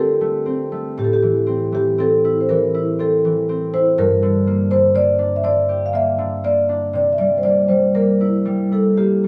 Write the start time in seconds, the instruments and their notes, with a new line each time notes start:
Already playing: harp D3 A3 C4, marimba A4
0.21 harp A3
0.46 harp C4
0.72 harp A3
0.97 harp A2, marimba G4
1.04 marimba A4
1.13 marimba G4
1.22 harp E3
1.46 harp C4
1.72 harp E3, marimba G4
1.98 harp C4, marimba A4
2.24 harp E4
2.41 marimba C5
2.49 harp E3, marimba A#4
2.74 harp E4
2.99 harp C4, marimba A4
3.25 harp E3
3.49 harp C4
3.73 harp E4, marimba C5
3.98 harp G2, marimba A#4
4.22 harp D3
4.47 harp A#3
4.71 harp D3, marimba C5
4.95 harp A#3, marimba D5
5.19 harp D4
5.36 marimba E5
5.43 harp D3, marimba D5
5.69 harp G4
5.86 marimba F5
5.93 harp A#3, marimba E5
6.18 harp D3
6.44 harp A#3, marimba D5
6.69 harp D4
6.93 harp C3, marimba D5
7.13 marimba E5
7.18 harp G3, marimba D5
7.38 marimba C5
7.43 harp A#3, marimba D5
7.68 harp G3, marimba C5
7.95 harp A#3, marimba A#4
8.21 harp E4
8.45 harp G3
8.71 harp E4, marimba A4
8.97 harp A#3, marimba G4
9.24 harp G3